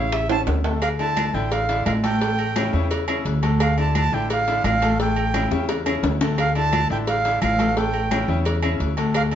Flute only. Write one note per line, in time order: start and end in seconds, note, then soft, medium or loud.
0.82 0.88 F5 medium
1.00 1.36 A5 loud
1.34 1.54 G5 medium
1.52 1.86 F5 medium
1.86 1.92 F5 medium
2.04 2.87 G5 loud
3.61 3.77 F5 medium
3.79 3.95 A5 medium
3.97 4.15 A5 loud
4.14 4.31 G5 loud
4.32 4.63 F5 loud
4.66 4.98 F5 loud
5.01 5.66 G5 medium
6.39 6.55 F5 loud
6.56 6.88 A5 loud
6.92 6.98 G5 medium
7.08 7.40 F5 medium
7.43 7.79 F5 loud
7.78 8.46 G5 medium
9.16 9.22 F5 loud